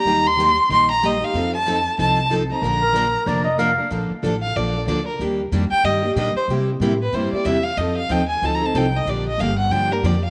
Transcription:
X:1
M:4/4
L:1/8
Q:"Swing" 1/4=186
K:Bb
V:1 name="Violin"
b c'3 c' b e f- | f a3 a2 z b- | b6 z2 | z3 f d2 d B |
z3 g e2 e c | z3 _c =c d =e f | e f g _a (3=a b a g e | d e f _g =g B d f |]
V:2 name="Clarinet"
z8 | z8 | z B3 d e f2 | z8 |
z8 | z8 | z8 | z8 |]
V:3 name="Steel-string acoustic guitar"
[E,G,B,EG] z [E,G,B,EG] z [E,G,B,EG] z [E,G,B,EG] [B,EG] | [F,CEA] z [F,CEA] z [F,CEA] z [F,CEA] [CEA] | [D,F,B,DB] z [D,F,B,DB] z [D,F,B,DB] z [D,F,B,DB] [B,DB] | [D,F,B,DA] z [D,F,B,DA] z [D,F,B,DA] [B,DA] [D,F,B,DA] z |
[E,G,B,DG] z [E,G,B,DG] z [E,G,B,DG] [B,DG] [E,G,B,DG] z | [C,G,B,=EG] z [C,G,B,EG] z [C,G,B,EG] [B,EG] [C,G,B,EG] z | [F,CEA] z [F,CEA] z [F,CEA] [CEA] [F,CEA] z | [D,F,B,DG] z [D,F,B,DG] z [D,F,B,DG] [B,DG] [D,F,B,DG] z |]
V:4 name="Steel-string acoustic guitar"
[E,G,B,EG] z [E,G,B,EG] z [E,G,B,EG] z [E,G,B,EG] z | [F,CEA] z [F,CEA] z [F,CEA] z [F,CEA] z | [D,F,B,DB] z [D,F,B,DB] z [D,F,B,DB] z [D,F,B,DB] z | [D,F,B,DA] z [D,F,B,DA] z [D,F,B,DA] z [D,F,B,DA] z |
[E,G,B,DG] z [E,G,B,DG] z [E,G,B,DG] z [E,G,B,DG] z | [C,G,B,=EG] z [C,G,B,EG] z [C,G,B,EG] z [C,G,B,EG] z | [F,CEA] z [F,CEA] z [F,CEA] z [F,CEA] z | [D,F,B,DG] z [D,F,B,DG] z [D,F,B,DG] z [D,F,B,DG] z |]
V:5 name="Upright bass" clef=bass
E,,4 B,,,4 | F,,4 C,,4 | B,,,4 F,,,4 | B,,, z A,,,2 B,,,2 D,,2 |
E,,2 F,, z G,,2 B,, z | C,2 A,,2 G,, z =E,,2 | F,,2 E,,2 D,,2 C,,2 | B,,,2 G,,,2 G,,2 F,,2 |]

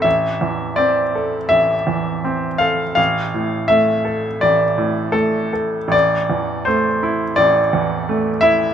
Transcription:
X:1
M:4/4
L:1/8
Q:1/4=83
K:Am
V:1 name="Grand piano"
e2 d2 e3 f | f2 e2 d2 A2 | d2 c2 d3 e |]
V:2 name="Grand piano" clef=bass
A,,, E,, C A A,,, E,, C A | A,,, A,, A, A A,,, A,, A, A | A,,, E,, A, E A,,, E,, A, E |]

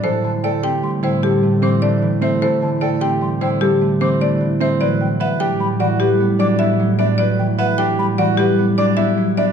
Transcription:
X:1
M:6/4
L:1/8
Q:1/4=151
K:Ador
V:1 name="Flute"
z a g z c' g z2 d' z2 e | z a g z c' g z2 d' z2 e | z g f z b f z2 d' z2 e | z g f z b f z2 d' z2 e |]
V:2 name="Marimba"
c z d g z c G z c d z c | c z d g z c G z c d z c | d z e g z d G z d e z d | d z e g z d G z d e z d |]
V:3 name="Grand piano"
A z A G z E A z C D z C | A z A G z E A z C D z C | B z B G z F B z D E z D | B z B G z F B z D E z D |]
V:4 name="Harp" clef=bass
[E,G,] D, A, C G, D, G, A, E, A, E, A, | E, D, A, C G, D, G, A, E, A, E, A, | F, E, B, D G, E, G, B, F, B, F, B, | F, E, B, D G, E, G, B, F, B, F, B, |]
V:5 name="Double bass section" clef=bass
A,,12- | A,,12 | A,,12- | A,,12 |]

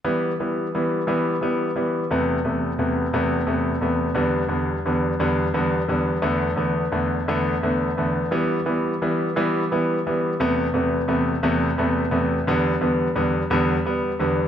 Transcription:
X:1
M:6/8
L:1/8
Q:3/8=58
K:Em
V:1 name="Grand piano" clef=bass
[E,G,B,] [E,G,B,] [E,G,B,] [E,G,B,] [E,G,B,] [E,G,B,] | [E,,C,A,B,] [E,,C,A,B,] [E,,C,A,B,] [E,,C,A,B,] [E,,C,A,B,] [E,,C,A,B,] | [E,,D,G,B,] [E,,D,G,B,] [E,,D,G,B,] [E,,D,G,B,] [E,,D,G,B,] [E,,D,G,B,] | [E,,D,A,B,] [E,,D,A,B,] [E,,D,A,B,] [E,,D,A,B,] [E,,D,A,B,] [E,,D,A,B,] |
[E,G,B,] [E,G,B,] [E,G,B,] [E,G,B,] [E,G,B,] [E,G,B,] | [E,,C,A,B,] [E,,C,A,B,] [E,,C,A,B,] [E,,C,A,B,] [E,,C,A,B,] [E,,C,A,B,] | [E,,D,G,B,] [E,,D,G,B,] [E,,D,G,B,] [E,,D,G,B,] [G,B,] [E,,D,G,B,] |]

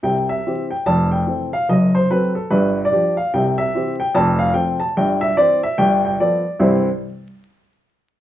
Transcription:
X:1
M:4/4
L:1/16
Q:"Swing" 1/4=146
K:C
V:1 name="Upright piano"
g2 e4 g2 a2 g4 f2 | _e2 c2 B2 A2 B3 d3 f2 | g2 e4 g2 a2 f2 g2 a2 | g2 e2 d2 e2 g2 g2 d4 |
[C,,G,,E,G,CEc]2 z12 z2 |]
V:2 name="Upright piano" clef=bass
[C,,C,]4 [E,CG]4 [F,,,F,,]4 [E,CA]4 | [^F,,,^F,,]4 [^F,CA]4 [G,,,G,,]4 [=F,DG]4 | [C,,C,]4 [E,CG]4 [F,,,F,,]4 [F,CA]4 | [G,,,G,,]4 [E,Cc]4 [G,,,G,,]4 [F,B,A]4 |
z16 |]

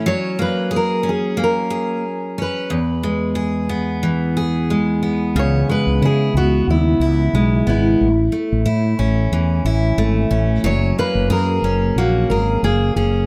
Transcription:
X:1
M:4/4
L:1/16
Q:"Swing 16ths" 1/4=91
K:F#dor
V:1 name="Steel-string acoustic guitar"
c2 B2 ^A2 G2 A6 B2- | B6 z8 z2 | c2 B2 G2 F2 E6 E2- | E6 z8 z2 |
c2 B2 ^A4 F2 A2 G2 G2 |]
V:2 name="Steel-string acoustic guitar"
F,2 ^A,2 G2 C2 A,2 G4 C2 | E,,2 G,2 G2 B,2 E,2 G2 G,2 B,2 | C,2 G,2 E2 B,4 E2 G,2 B,2 | z2 A,2 E2 C2 E,2 E2 A,2 C2 |
F,2 ^A,2 G2 C2 A,2 G2 A,2 C2 |]
V:3 name="Fretless electric bass" clef=bass
z16 | z16 | C,,2 z C,, C,2 C,,2 D,,2 C,,2 B,,,2 G,,,2 | A,,,2 z A,,, A,,2 A,,,2 E,,2 A,,,2 G,,,2 A,,,2 |
F,,,2 z F,,, F,,2 F,,,2 ^A,,,2 G,,,2 F,,,2 F,,,2 |]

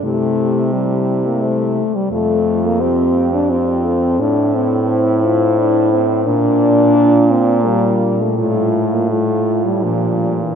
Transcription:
X:1
M:3/4
L:1/16
Q:1/4=86
K:F
V:1 name="French horn"
G4 G4 c2 z2 | A4 F4 G2 A2 | [K:Bblyd] A4 c8 | B8 B4 |
F4 F4 G4 |]
V:2 name="French horn"
E4 E6 z2 | F4 G4 F4 | [K:Bblyd] E8 D2 C2 | D4 F4 F4 |
F4 F4 D4 |]
V:3 name="French horn"
A,4 G,3 B, A,3 G, | A,3 B, C3 D C4 | [K:Bblyd] D2 C4 F2 E3 z | D6 C2 G,3 A, |
A,3 B, A,3 G, F,3 E, |]
V:4 name="French horn" clef=bass
C,8- C,2 z2 | F,,12 | [K:Bblyd] A,,12 | B,,12 |
A,,8 B,,4 |]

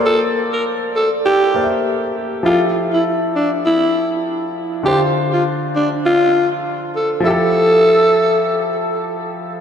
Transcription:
X:1
M:4/4
L:1/16
Q:"Swing 16ths" 1/4=100
K:F
V:1 name="Grand piano"
[B,Acd]8- [B,Acd]2 [B,Acde]6 | [F,EGA]16 | [D,DEFc]16 | [F,EGA]16 |]
V:2 name="Alto saxophone"
A z2 B z2 A z G3 z4 z | F z2 E z2 D z E3 z4 z | G z2 F z2 D z F3 z3 A z | A12 z4 |]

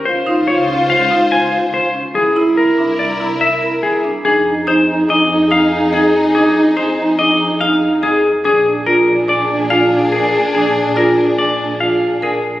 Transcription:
X:1
M:5/4
L:1/8
Q:1/4=143
K:Cphr
V:1 name="Clean electric guitar"
c z d z f z a z c z | A z B z =d z =e z A z | [K:Fdor] A z c z e z f z A z | A z c z e z f z A z |
A z B z d z f z A z | A z B z d z f z A z |]
V:2 name="String section"
[Fc]8- [Fc] z | [=EB]8- [EB] z | [K:Fdor] [EA]8- [EA]2- | [EA]8- [EA] z |
[DA]8- [DA]2- | [DA]8- [DA] z |]
V:3 name="French horn"
F F F F F F F F F z | =E E E E E E E E E z | [K:Fdor] E E E E E E E E E E | E E E E E E E E E z |
D D D D D D D D D D | D D D D D D D D D z |]
V:4 name="Marimba"
z E z D z E z c z D | z =E z =D z E z B z D | [K:Fdor] D z E z D z E z A z | D z E z D z E z A z |
D z F z D z F z B z | D z F z D z F z B z |]
V:5 name="Double bass section" clef=bass
D,,8- D,,2 | C,,8- C,,2 | [K:Fdor] F,,8- F,,2- | F,,8- F,,2 |
B,,,8- B,,,2- | B,,,8- B,,,2 |]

